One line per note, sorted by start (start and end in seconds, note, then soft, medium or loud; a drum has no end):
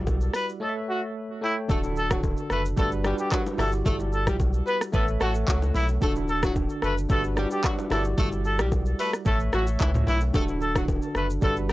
0.00 0.29 B1 medium
0.00 0.12 G3 medium
0.00 0.13 E4 medium
0.00 0.13 F#4 medium
0.00 0.14 D5 medium
0.07 kick medium
0.07 high bongo medium
0.07 shaker medium
0.21 shaker medium
0.34 0.47 B4 medium
0.34 cross-stick medium
0.34 open hi-hat medium
0.34 shaker medium
0.49 shaker medium
0.60 1.26 A3 medium
0.60 1.26 A4 medium
0.60 0.74 A4 medium
0.60 1.27 C#5 medium
0.60 0.69 D#5 medium
0.69 1.31 E5 medium
0.90 1.01 F#4 medium
1.41 1.62 A3 medium
1.41 1.55 E4 medium
1.41 1.62 A4 medium
1.41 1.63 C#5 medium
1.41 1.63 G5 medium
1.68 2.34 D1 loud
1.68 2.48 D3 medium
1.68 1.81 A3 loud
1.68 2.48 D4 medium
1.68 2.49 F#4 medium
1.68 1.81 A4 loud
1.68 2.49 A4 loud
1.68 kick loud
1.68 low conga medium
1.68 shaker medium
1.83 low bongo medium
1.83 shaker medium
1.96 2.09 A4 medium
1.96 shaker medium
2.10 2.21 F#3 medium
2.10 2.21 F#4 medium
2.10 kick medium
2.10 cross-stick loud
2.10 low bongo medium
2.10 shaker loud
2.23 kick medium
2.23 high bongo medium
2.23 shaker medium
2.37 shaker medium
2.50 2.74 F#1 loud
2.50 2.62 A3 medium
2.50 2.62 A4 medium
2.50 2.63 B4 medium
2.50 cross-stick medium
2.50 shaker medium
2.65 shaker loud
2.76 3.14 G1 medium
2.76 2.99 G3 medium
2.76 2.89 A3 medium
2.76 2.99 D4 medium
2.76 3.00 F#4 medium
2.76 2.89 A4 loud
2.76 2.90 A4 medium
2.76 3.00 B4 medium
2.76 kick loud
2.76 low conga medium
2.76 shaker medium
2.91 shaker medium
3.04 3.56 G3 medium
3.04 3.16 G3 medium
3.04 3.59 D4 medium
3.04 3.58 F#4 medium
3.04 3.16 G4 loud
3.04 3.59 B4 medium
3.04 cross-stick loud
3.04 low bongo medium
3.04 shaker medium
3.18 3.30 G4 medium
3.18 shaker medium
3.31 3.43 F#3 medium
3.31 3.43 F#4 medium
3.31 kick loud
3.31 cross-stick medium
3.31 clap medium
3.31 high bongo medium
3.31 shaker medium
3.46 low bongo medium
3.46 shaker medium
3.58 3.82 G1 loud
3.58 3.70 E3 medium
3.58 4.45 G3 medium
3.58 3.70 E4 medium
3.58 4.45 E4 medium
3.58 4.46 F#4 medium
3.58 3.71 A4 medium
3.58 4.46 D5 medium
3.58 cross-stick medium
3.58 open hi-hat medium
3.58 high bongo medium
3.58 low conga medium
3.58 shaker soft
3.72 high bongo medium
3.72 shaker medium
3.85 4.28 G1 loud
3.85 3.97 A3 loud
3.85 3.97 A4 loud
3.85 kick loud
3.85 low conga medium
3.85 shaker medium
4.00 low bongo medium
4.00 shaker medium
4.12 4.25 A4 medium
4.12 shaker medium
4.27 4.62 B1 medium
4.27 4.37 G3 medium
4.27 4.37 G4 medium
4.27 kick medium
4.27 cross-stick loud
4.27 low bongo medium
4.27 shaker loud
4.40 kick medium
4.40 high bongo medium
4.40 shaker medium
4.53 shaker medium
4.67 4.78 B3 medium
4.67 4.78 B4 medium
4.67 4.79 B4 medium
4.67 shaker medium
4.81 cross-stick loud
4.81 shaker loud
4.92 5.17 A1 loud
4.92 5.15 A3 medium
4.92 5.05 B3 medium
4.92 5.15 A4 medium
4.92 5.06 A4 medium
4.92 5.05 B4 loud
4.92 5.16 C#5 medium
4.92 5.16 E5 medium
4.92 kick loud
4.92 low conga medium
4.92 shaker medium
5.08 shaker medium
5.20 5.45 A1 medium
5.20 5.80 A3 medium
5.20 5.32 A3 medium
5.20 5.33 F#4 medium
5.20 5.80 A4 medium
5.20 5.32 A4 loud
5.20 5.80 C#5 medium
5.20 5.81 F#5 medium
5.20 cross-stick medium
5.20 low bongo medium
5.20 shaker medium
5.35 shaker loud
5.48 5.72 C#2 medium
5.48 5.59 F#3 medium
5.48 5.59 F#4 loud
5.48 kick loud
5.48 clap medium
5.48 high bongo medium
5.48 shaker medium
5.62 low bongo medium
5.62 shaker medium
5.74 5.99 B1 loud
5.74 5.86 E3 medium
5.74 5.86 E4 loud
5.74 5.87 E4 medium
5.74 open hi-hat medium
5.74 high bongo medium
5.74 low conga medium
5.74 shaker soft
5.88 high bongo medium
5.88 shaker medium
6.01 6.67 D1 loud
6.01 6.80 D3 medium
6.01 6.13 A3 loud
6.01 6.81 D4 medium
6.01 6.81 F#4 medium
6.01 6.13 A4 loud
6.01 6.82 A4 loud
6.01 kick loud
6.01 low conga medium
6.01 shaker medium
6.16 low bongo medium
6.16 shaker medium
6.28 6.41 A4 medium
6.28 shaker medium
6.43 6.53 F#3 medium
6.43 6.53 F#4 medium
6.43 kick medium
6.43 cross-stick loud
6.43 low bongo medium
6.43 shaker loud
6.56 kick medium
6.56 high bongo medium
6.56 shaker medium
6.69 shaker medium
6.82 7.07 F#1 loud
6.82 6.94 A3 medium
6.82 6.94 A4 medium
6.82 6.96 B4 medium
6.82 cross-stick medium
6.82 shaker medium
6.98 shaker loud
7.09 7.46 G1 loud
7.09 7.31 G3 medium
7.09 7.21 A3 medium
7.09 7.32 D4 medium
7.09 7.32 F#4 medium
7.09 7.21 A4 loud
7.09 7.22 A4 medium
7.09 7.32 B4 medium
7.09 kick loud
7.09 low conga medium
7.09 shaker medium
7.24 shaker medium
7.36 7.89 G3 medium
7.36 7.48 G3 medium
7.36 7.91 D4 medium
7.36 7.90 F#4 medium
7.36 7.48 G4 loud
7.36 7.92 D5 medium
7.36 cross-stick medium
7.36 low bongo medium
7.36 shaker medium
7.51 7.63 G4 medium
7.51 shaker medium
7.64 7.75 F#3 medium
7.64 7.75 F#4 medium
7.64 kick loud
7.64 cross-stick medium
7.64 clap medium
7.64 high bongo medium
7.64 shaker medium
7.79 low bongo medium
7.79 shaker medium
7.90 8.15 G1 loud
7.90 8.02 E3 medium
7.90 8.77 G3 medium
7.90 8.77 E4 medium
7.90 8.02 E4 loud
7.90 8.78 F#4 medium
7.90 8.03 A4 medium
7.90 7.98 C#5 medium
7.90 cross-stick loud
7.90 open hi-hat medium
7.90 high bongo medium
7.90 low conga medium
7.90 shaker soft
7.99 8.82 D5 medium
8.04 high bongo medium
8.04 shaker medium
8.18 8.60 G1 loud
8.18 8.29 A3 loud
8.18 8.29 A4 loud
8.18 kick loud
8.18 low conga medium
8.18 shaker medium
8.32 low bongo medium
8.32 shaker medium
8.45 8.58 A4 medium
8.45 shaker medium
8.59 8.94 B1 medium
8.59 8.69 G3 medium
8.59 8.69 G4 medium
8.59 cross-stick loud
8.59 low bongo medium
8.59 shaker loud
8.72 kick medium
8.72 high bongo medium
8.72 shaker medium
8.86 shaker medium
8.99 9.10 A3 medium
8.99 9.10 A4 medium
8.99 9.12 B4 medium
8.99 open hi-hat medium
8.99 shaker medium
9.13 cross-stick loud
9.13 shaker loud
9.25 9.50 A1 loud
9.25 9.47 A3 medium
9.25 9.37 A3 medium
9.25 9.37 A4 medium
9.25 9.48 A4 medium
9.25 9.39 A4 medium
9.25 9.48 C#5 medium
9.25 9.49 E5 medium
9.25 kick loud
9.25 low conga medium
9.25 shaker medium
9.40 shaker medium
9.52 9.77 A1 loud
9.52 9.64 F#3 medium
9.52 10.12 A3 medium
9.52 9.64 F#4 loud
9.52 9.66 F#4 medium
9.52 10.12 A4 medium
9.52 10.13 C#5 medium
9.52 10.13 E5 medium
9.52 cross-stick loud
9.52 low bongo medium
9.52 shaker medium
9.67 shaker loud
9.80 10.04 C#2 medium
9.80 9.91 E3 medium
9.80 9.91 E4 medium
9.80 kick loud
9.80 clap medium
9.80 high bongo medium
9.80 shaker medium
9.94 mid tom loud
9.94 low bongo medium
9.94 shaker medium
10.07 10.31 B1 loud
10.07 10.18 E3 medium
10.07 10.18 E4 medium
10.07 10.20 E4 medium
10.07 open hi-hat medium
10.07 high bongo medium
10.07 low conga medium
10.07 shaker soft
10.21 high bongo medium
10.21 shaker medium
10.33 10.99 D1 loud
10.33 11.13 D3 medium
10.33 10.45 A3 loud
10.33 11.13 D4 medium
10.33 11.13 F#4 medium
10.33 10.42 G4 medium
10.33 10.45 A4 loud
10.33 kick loud
10.33 low conga medium
10.33 shaker medium
10.42 11.17 A4 loud
10.48 low bongo medium
10.48 shaker medium
10.61 10.74 A4 medium
10.61 shaker medium
10.75 10.86 F#3 medium
10.75 10.86 F#4 medium
10.75 kick medium
10.75 cross-stick loud
10.75 low bongo medium
10.75 shaker loud
10.88 kick medium
10.88 high bongo medium
10.88 shaker medium
11.02 shaker medium
11.15 11.39 F#1 loud
11.15 11.27 A3 medium
11.15 11.27 A4 medium
11.15 11.28 B4 medium
11.15 cross-stick medium
11.15 shaker medium
11.30 shaker loud
11.41 11.73 G1 loud
11.41 11.64 G3 medium
11.41 11.54 A3 medium
11.41 11.64 D4 medium
11.41 11.64 F#4 medium
11.41 11.54 A4 loud
11.41 11.55 A4 medium
11.41 11.65 B4 medium
11.41 kick loud
11.41 low conga medium
11.41 shaker medium
11.56 shaker medium
11.68 11.73 G3 medium
11.68 11.73 D4 medium
11.68 11.73 G4 loud
11.68 cross-stick medium
11.68 low bongo medium
11.68 shaker medium